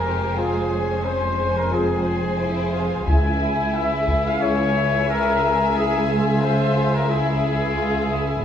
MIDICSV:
0, 0, Header, 1, 9, 480
1, 0, Start_track
1, 0, Tempo, 671141
1, 269, Time_signature, 4, 2, 24, 8
1, 6042, End_track
2, 0, Start_track
2, 0, Title_t, "Violin section"
2, 0, Program_c, 0, 48
2, 0, Note_on_c, 0, 80, 51
2, 2163, Note_off_c, 0, 80, 0
2, 2192, Note_on_c, 0, 80, 48
2, 6000, Note_off_c, 0, 80, 0
2, 6042, End_track
3, 0, Start_track
3, 0, Title_t, "Trumpet section"
3, 0, Program_c, 1, 61
3, 0, Note_on_c, 1, 70, 62
3, 265, Note_on_c, 1, 68, 52
3, 267, Note_off_c, 1, 70, 0
3, 736, Note_off_c, 1, 68, 0
3, 745, Note_on_c, 1, 72, 56
3, 1106, Note_off_c, 1, 72, 0
3, 1119, Note_on_c, 1, 70, 51
3, 1231, Note_on_c, 1, 68, 63
3, 1233, Note_off_c, 1, 70, 0
3, 2199, Note_off_c, 1, 68, 0
3, 2199, Note_on_c, 1, 80, 72
3, 2670, Note_off_c, 1, 80, 0
3, 2681, Note_on_c, 1, 76, 61
3, 3039, Note_off_c, 1, 76, 0
3, 3045, Note_on_c, 1, 77, 71
3, 3153, Note_on_c, 1, 73, 71
3, 3160, Note_off_c, 1, 77, 0
3, 3622, Note_off_c, 1, 73, 0
3, 3634, Note_on_c, 1, 70, 80
3, 4101, Note_off_c, 1, 70, 0
3, 4110, Note_on_c, 1, 68, 63
3, 4588, Note_on_c, 1, 72, 70
3, 4589, Note_off_c, 1, 68, 0
3, 4948, Note_off_c, 1, 72, 0
3, 4962, Note_on_c, 1, 70, 60
3, 5068, Note_on_c, 1, 68, 80
3, 5075, Note_off_c, 1, 70, 0
3, 5907, Note_off_c, 1, 68, 0
3, 6042, End_track
4, 0, Start_track
4, 0, Title_t, "Viola section"
4, 0, Program_c, 2, 48
4, 0, Note_on_c, 2, 56, 45
4, 0, Note_on_c, 2, 72, 49
4, 2167, Note_off_c, 2, 56, 0
4, 2167, Note_off_c, 2, 72, 0
4, 2197, Note_on_c, 2, 68, 47
4, 2197, Note_on_c, 2, 76, 49
4, 6002, Note_off_c, 2, 68, 0
4, 6002, Note_off_c, 2, 76, 0
4, 6042, End_track
5, 0, Start_track
5, 0, Title_t, "Violin section"
5, 0, Program_c, 3, 48
5, 29, Note_on_c, 3, 67, 41
5, 263, Note_off_c, 3, 67, 0
5, 272, Note_on_c, 3, 65, 44
5, 507, Note_on_c, 3, 61, 45
5, 509, Note_off_c, 3, 65, 0
5, 1213, Note_off_c, 3, 61, 0
5, 1235, Note_on_c, 3, 60, 43
5, 1708, Note_on_c, 3, 64, 59
5, 1711, Note_off_c, 3, 60, 0
5, 1953, Note_off_c, 3, 64, 0
5, 1954, Note_on_c, 3, 65, 42
5, 2199, Note_off_c, 3, 65, 0
5, 2204, Note_on_c, 3, 64, 57
5, 3607, Note_off_c, 3, 64, 0
5, 3643, Note_on_c, 3, 64, 54
5, 3872, Note_off_c, 3, 64, 0
5, 3877, Note_on_c, 3, 68, 47
5, 4113, Note_off_c, 3, 68, 0
5, 4116, Note_on_c, 3, 64, 50
5, 4352, Note_off_c, 3, 64, 0
5, 4359, Note_on_c, 3, 65, 54
5, 5074, Note_off_c, 3, 65, 0
5, 5075, Note_on_c, 3, 64, 55
5, 5541, Note_off_c, 3, 64, 0
5, 5552, Note_on_c, 3, 65, 59
5, 5791, Note_off_c, 3, 65, 0
5, 5798, Note_on_c, 3, 64, 46
5, 6035, Note_off_c, 3, 64, 0
5, 6042, End_track
6, 0, Start_track
6, 0, Title_t, "French horn section"
6, 0, Program_c, 4, 60
6, 264, Note_on_c, 4, 56, 39
6, 265, Note_on_c, 4, 65, 42
6, 432, Note_off_c, 4, 56, 0
6, 433, Note_off_c, 4, 65, 0
6, 1223, Note_on_c, 4, 56, 46
6, 1232, Note_on_c, 4, 65, 45
6, 1391, Note_off_c, 4, 56, 0
6, 1397, Note_off_c, 4, 65, 0
6, 2210, Note_on_c, 4, 56, 43
6, 2212, Note_on_c, 4, 64, 46
6, 2374, Note_off_c, 4, 56, 0
6, 2375, Note_off_c, 4, 64, 0
6, 3158, Note_on_c, 4, 56, 46
6, 3159, Note_on_c, 4, 64, 44
6, 3323, Note_off_c, 4, 56, 0
6, 3324, Note_off_c, 4, 64, 0
6, 4115, Note_on_c, 4, 56, 46
6, 4120, Note_on_c, 4, 64, 50
6, 4280, Note_off_c, 4, 56, 0
6, 4283, Note_off_c, 4, 64, 0
6, 5070, Note_on_c, 4, 64, 54
6, 5072, Note_on_c, 4, 56, 47
6, 5237, Note_off_c, 4, 64, 0
6, 5238, Note_off_c, 4, 56, 0
6, 6042, End_track
7, 0, Start_track
7, 0, Title_t, "Cello section"
7, 0, Program_c, 5, 48
7, 0, Note_on_c, 5, 41, 55
7, 2167, Note_off_c, 5, 41, 0
7, 2199, Note_on_c, 5, 37, 43
7, 6003, Note_off_c, 5, 37, 0
7, 6042, End_track
8, 0, Start_track
8, 0, Title_t, "Double bass section"
8, 0, Program_c, 6, 48
8, 0, Note_on_c, 6, 29, 56
8, 2165, Note_off_c, 6, 29, 0
8, 2191, Note_on_c, 6, 37, 45
8, 5999, Note_off_c, 6, 37, 0
8, 6042, End_track
9, 0, Start_track
9, 0, Title_t, "Taiko and cinematic ensemble drums"
9, 2194, Note_on_c, 9, 41, 49
9, 2265, Note_off_c, 9, 41, 0
9, 2917, Note_on_c, 9, 41, 31
9, 2988, Note_off_c, 9, 41, 0
9, 6042, End_track
0, 0, End_of_file